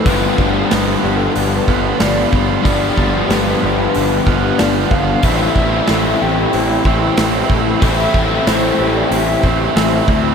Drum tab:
HH |o-o-o-o-|o-o-o-o-|o-o-o-o-|o-o-o-o-|
SD |--o---o-|--o---o-|--o---o-|--o---o-|
BD |oo---o-o|oo---o-o|oo---o-o|oo---o-o|